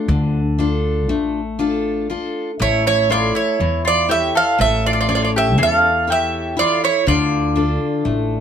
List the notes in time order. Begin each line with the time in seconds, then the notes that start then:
Already playing: D4 F4 A4
0.08 D2 D3
0.59 D4 F4 A4
1.09 A1 A3
1.59 D4 F4 A4
2.10 D4 F4 A4
2.60 A1 A3 E4 C#5
2.87 E4 C#5
3.10 E4 F4 A4 C#5 D5
3.35 E4 C#5
3.60 E2 E3
3.85 F4 D5
4.09 E4 G4 A4 C#5 E5
4.35 A4 F5
4.58 A1 A3 A4 E5
4.86 F4 D5
4.93 F4 D5
5.01 F4 D5
5.08 C#4 F4 A4 C#5 D5
5.15 F4 D5
5.22 F4 D5
5.36 G4 E5
5.58 E2 E3 A4
5.63 F5
6.07 E4 G4 A4 C#5
6.12 E5
6.57 E4 F4 A4 C#5 D5
6.84 E4 C#5
7.07 D2 D3 F4 D5
7.56 D4 F4 A4
8.05 A1 A3